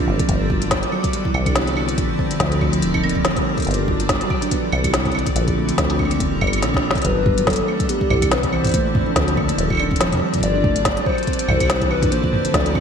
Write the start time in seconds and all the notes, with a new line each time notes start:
Already playing: D4 D5
0.08 G1 A#3
0.19 F3, kick, closed hi-hat
0.29 G1 A3, kick, closed hi-hat
0.41 G3
0.50 F#3, kick
0.62 closed hi-hat
0.71 B3, kick, snare, closed hi-hat
0.83 closed hi-hat
0.92 F#3, claves
1.04 F#3, kick, closed hi-hat
1.13 D3 G3, closed hi-hat
1.25 E3, kick
1.34 C2 E3 C4, claves
1.46 D4, kick, closed hi-hat, claves
1.56 B3, snare, closed hi-hat
1.67 E3, closed hi-hat
1.77 B3, claves
1.88 G3, closed hi-hat
1.98 A#1 F3, kick, closed hi-hat
2.19 C4, kick
2.31 closed hi-hat
2.40 D2 F3, kick, snare, closed hi-hat
2.52 F3, closed hi-hat
2.61 A3, kick, claves
2.73 F3, closed hi-hat
2.82 D#1 F3, closed hi-hat
2.94 D#4, kick, claves
3.02 A#3 D4, claves
3.09 closed hi-hat
3.15 F3, kick
3.25 A#3, snare, closed hi-hat
3.36 G3, kick, closed hi-hat
3.46 F3
3.58 kick, closed hi-hat
3.60 closed hi-hat
3.62 closed hi-hat
3.65 G1, closed hi-hat
3.67 B3, closed hi-hat
3.71 closed hi-hat
3.74 closed hi-hat
3.88 F#3, kick
4.00 F#3, closed hi-hat
4.09 G3, kick, snare, closed hi-hat
4.21 F#3, closed hi-hat
4.30 F#3, kick, claves
4.42 D4, closed hi-hat
4.51 D3 B3, kick, closed hi-hat
4.63 E3
4.69 C2 B3 C4, claves
4.84 G3, kick, closed hi-hat, claves
4.94 E3, snare, closed hi-hat
5.05 kick, closed hi-hat
5.12 C4, closed hi-hat, claves
5.19 closed hi-hat
5.26 kick, closed hi-hat
5.36 A#1 F3, closed hi-hat
5.48 F3, kick, closed hi-hat
5.57 A3 A4
5.69 F3, closed hi-hat
5.78 D2 F3, kick, snare, closed hi-hat
5.90 D4, closed hi-hat
5.99 A#3, kick, claves
6.05 claves
6.11 F3, closed hi-hat, claves
6.16 claves
6.20 D#1 A#3, kick, closed hi-hat
6.31 G3 D4
6.41 G1 F3, kick, claves
6.47 claves
6.53 closed hi-hat, claves
6.58 claves
6.62 A#1 D4, snare, closed hi-hat
6.74 kick, snare
6.84 F3
6.91 snare
6.95 F3, kick, closed hi-hat
6.98 closed hi-hat
7.02 F#3 D5, closed hi-hat
7.05 G1 B4, kick, closed hi-hat
7.16 F#3
7.26 G3, kick, mid tom
7.38 F#3, closed hi-hat
7.47 F#3 A4, kick, snare, closed hi-hat
7.50 closed hi-hat
7.53 closed hi-hat
7.56 D4, closed hi-hat
7.68 A3, claves
7.80 F#3, kick, closed hi-hat
7.89 D3 B3 G4, closed hi-hat
7.99 G3 C4, kick
8.09 C2 E3 E4, mid tom, claves
8.22 kick, closed hi-hat, claves
8.31 C4 B4, snare, closed hi-hat
8.43 kick, closed hi-hat
8.53 E3 C5, claves
8.65 E3, closed hi-hat, mid tom
8.67 closed hi-hat
8.69 closed hi-hat
8.72 A#1, kick, closed hi-hat
8.74 A3, closed hi-hat
8.86 F3
8.95 F3, kick, mid tom
9.07 D4
9.16 D2 A#3, kick, snare, closed hi-hat
9.28 F3, closed hi-hat
9.37 A#3, kick, claves
9.49 A3, closed hi-hat
9.58 D#1 F3, closed hi-hat
9.66 D4, kick, claves
9.73 claves
9.75 claves
9.77 claves
9.80 D4, claves
9.91 kick
9.96 closed hi-hat
10.01 F3, snare, closed hi-hat
10.12 F3, kick, closed hi-hat
10.15 kick
10.17 kick
10.19 G3, kick
10.34 F3, kick, closed hi-hat
10.36 kick
10.38 kick
10.41 G1 F#3 D5, kick, closed hi-hat
10.55 D4
10.64 A3, kick, mid tom
10.76 F#3, closed hi-hat
10.85 A3, kick, snare, closed hi-hat
10.97 G3, closed hi-hat
11.06 F#3 C5, kick, claves
11.09 claves
11.12 claves
11.15 closed hi-hat, claves
11.23 closed hi-hat
11.27 D3 C4, kick, closed hi-hat
11.33 closed hi-hat
11.39 closed hi-hat
11.47 C2 E3 C4, mid tom, claves
11.60 E3, kick, closed hi-hat, claves
11.63 claves
11.65 claves
11.67 G3, snare, closed hi-hat, claves
11.73 claves
11.76 claves
11.79 E3, kick, closed hi-hat, claves
11.91 E3 B4, claves
12.03 D4, kick, closed hi-hat, mid tom
12.12 A#1 A#3 C5, closed hi-hat
12.24 F3 A4, kick
12.33 A#3, mid tom
12.45 A3, closed hi-hat
12.54 D2 F3 D5, kick, snare, closed hi-hat
12.66 closed hi-hat
12.75 C4, kick, claves